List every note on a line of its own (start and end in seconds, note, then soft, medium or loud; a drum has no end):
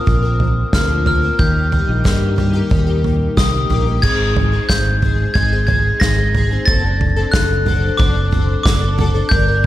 0.00 1.40 F3 soft
0.00 0.39 C4 soft
0.00 0.72 F4 medium
0.00 1.05 A#4 medium
0.00 0.36 D#6 medium
0.06 0.63 A#1 medium
0.06 1.35 A#2 medium
0.06 0.23 F3 medium
0.06 0.24 A#3 medium
0.06 0.23 C4 medium
0.06 0.21 A#4 medium
0.06 kick medium
0.06 floor tom medium
0.23 0.73 A#3 soft
0.23 0.74 C4 soft
0.23 0.73 A#4 soft
0.40 1.36 C4 soft
0.40 floor tom medium
0.73 1.29 D2 medium
0.73 1.06 A#2 medium
0.73 1.05 F3 medium
0.73 1.05 A#3 medium
0.73 1.06 C4 medium
0.73 1.35 F4 soft
0.73 1.07 A#4 medium
0.73 1.06 F6 medium
0.73 kick medium
0.73 snare medium
0.73 floor tom medium
1.06 1.23 F3 soft
1.06 1.23 A#3 medium
1.06 1.22 C4 medium
1.06 1.36 A#4 medium
1.06 1.21 A#4 medium
1.06 1.38 F6 medium
1.06 floor tom medium
1.22 1.38 A#3 soft
1.22 1.40 C4 soft
1.22 1.39 A#4 soft
1.39 1.81 D#2 medium
1.39 1.70 D#3 medium
1.39 3.99 D#3 medium
1.39 1.71 A#3 medium
1.39 1.72 D#4 medium
1.39 1.73 G4 medium
1.39 3.33 G6 medium
1.39 kick medium
1.39 floor tom medium
1.72 2.03 D#3 soft
1.72 2.37 G3 medium
1.72 2.04 A#3 medium
1.72 2.04 D#4 medium
1.72 2.05 G4 medium
1.72 floor tom medium
1.89 2.03 A#1 medium
2.04 2.61 G2 medium
2.04 2.35 D#3 medium
2.04 2.36 A#3 medium
2.04 3.04 A#3 medium
2.04 2.37 D#4 medium
2.04 2.38 G4 medium
2.04 kick medium
2.04 snare medium
2.04 floor tom medium
2.36 2.54 D#3 medium
2.36 3.99 G3 medium
2.36 2.55 A#3 medium
2.36 2.54 D#4 medium
2.36 2.52 G4 medium
2.36 floor tom medium
2.53 2.69 A#3 soft
2.53 2.70 D#4 medium
2.53 2.71 G4 medium
2.70 3.27 D#2 medium
2.70 3.99 A#2 medium
2.70 2.87 D#3 medium
2.70 2.88 A#3 medium
2.70 2.87 D#4 medium
2.70 2.85 G4 medium
2.70 kick medium
2.70 floor tom medium
2.87 3.36 A#3 soft
2.87 3.37 D#4 soft
2.87 3.37 G4 soft
3.04 4.04 A#3 soft
3.04 floor tom medium
3.37 3.67 C2 medium
3.37 3.68 D#3 medium
3.37 3.69 A#3 medium
3.37 4.00 D#4 soft
3.37 3.70 D#4 medium
3.37 3.71 G4 medium
3.37 4.00 D#6 medium
3.37 kick medium
3.37 snare medium
3.37 floor tom medium
3.70 4.00 A#1 medium
3.70 3.87 D#3 medium
3.70 3.87 A#3 medium
3.70 3.86 D#4 medium
3.70 4.04 G4 medium
3.70 3.85 G4 medium
3.70 floor tom medium
3.86 4.04 A#3 soft
3.86 4.03 D#4 soft
3.86 4.03 G4 soft
4.02 4.59 G#1 medium
4.02 4.53 G#2 medium
4.02 4.53 D#3 medium
4.02 4.53 G#3 medium
4.02 4.53 C4 medium
4.02 4.52 D#4 medium
4.02 4.51 G#4 medium
4.02 4.71 G#6 medium
4.02 kick medium
4.02 floor tom medium
4.02 crash medium
4.37 floor tom medium
4.52 5.01 G#3 soft
4.52 5.02 C4 soft
4.52 5.03 D#4 soft
4.52 5.02 G#4 soft
4.69 5.25 G#1 medium
4.69 5.31 G6 medium
4.69 kick medium
4.69 snare medium
4.69 floor tom medium
5.02 5.35 G#3 soft
5.02 5.35 C4 medium
5.02 5.35 D#4 medium
5.02 5.36 G#4 medium
5.02 floor tom medium
5.34 5.91 G#1 medium
5.34 5.52 G#2 medium
5.34 5.52 D#3 medium
5.34 5.52 G#3 medium
5.34 5.52 C4 medium
5.34 5.52 D#4 medium
5.34 5.51 G#4 medium
5.34 5.66 G#6 medium
5.34 kick loud
5.34 floor tom medium
5.52 5.67 G#3 soft
5.52 5.68 C4 soft
5.52 5.68 D#4 soft
5.52 5.69 G#4 soft
5.67 6.01 G#3 medium
5.67 6.02 C4 soft
5.67 6.02 D#4 medium
5.67 6.02 G#4 medium
5.67 6.02 G#6 medium
5.67 floor tom medium
6.00 6.57 G#1 medium
6.00 6.18 G#2 medium
6.00 6.18 D#3 medium
6.00 6.19 G#3 medium
6.00 6.18 C4 medium
6.00 6.17 D#4 medium
6.00 6.16 G#4 medium
6.00 6.63 A#6 medium
6.00 kick loud
6.00 snare medium
6.00 floor tom medium
6.18 6.33 G#3 soft
6.18 6.34 C4 soft
6.18 6.35 D#4 soft
6.18 6.34 G#4 soft
6.34 6.51 G#3 medium
6.34 6.52 C4 medium
6.34 6.51 D#4 medium
6.34 6.50 G#4 medium
6.34 floor tom medium
6.51 6.67 G#3 soft
6.51 6.67 C4 soft
6.51 6.68 D#4 soft
6.51 6.68 G#4 soft
6.66 7.23 F#1 medium
6.66 6.84 F#3 medium
6.66 6.85 C4 medium
6.66 6.84 D4 medium
6.66 6.83 A4 medium
6.66 7.35 A6 medium
6.66 kick medium
6.66 floor tom medium
6.84 7.18 C4 soft
6.84 7.16 D4 soft
6.84 7.15 A4 soft
7.01 floor tom medium
7.16 7.66 C4 soft
7.16 7.67 D4 soft
7.16 7.66 A4 soft
7.32 7.89 F#1 medium
7.32 8.01 F#6 medium
7.32 kick medium
7.32 snare medium
7.32 floor tom medium
7.66 7.97 F#3 soft
7.66 7.98 C4 medium
7.66 7.98 D4 medium
7.66 7.99 A4 medium
7.66 floor tom medium
7.97 8.55 F#1 medium
7.97 8.15 F#3 medium
7.97 8.16 C4 medium
7.97 8.15 D4 medium
7.97 8.14 A4 medium
7.97 8.62 D6 medium
7.97 kick loud
7.97 floor tom medium
8.15 8.31 C4 soft
8.15 8.32 D4 soft
8.15 8.32 A4 soft
8.31 8.64 F#3 medium
8.31 8.65 C4 medium
8.31 8.65 D4 medium
8.31 8.66 A4 medium
8.31 floor tom medium
8.63 9.21 F#1 medium
8.63 8.82 F#3 medium
8.63 8.82 C4 medium
8.63 8.81 D4 medium
8.63 8.80 A4 medium
8.63 9.32 D6 medium
8.63 kick loud
8.63 snare loud
8.63 floor tom medium
8.81 8.98 C4 soft
8.81 8.99 D4 soft
8.81 8.98 A4 soft
8.98 9.15 F#3 medium
8.98 9.15 C4 medium
8.98 9.14 D4 medium
8.98 9.13 A4 medium
8.98 floor tom medium
9.14 9.32 C4 soft
9.14 9.31 D4 soft
9.14 9.31 A4 soft
9.29 9.66 G1 medium
9.29 9.48 G2 medium
9.29 9.48 D3 medium
9.29 9.48 G3 medium
9.29 9.47 A#3 medium
9.29 9.47 D4 medium
9.29 9.46 A#4 medium
9.29 9.66 G6 medium
9.29 kick medium
9.29 floor tom medium
9.47 9.66 G3 soft
9.47 9.66 A#3 soft
9.47 9.66 D4 soft
9.47 9.66 A#4 soft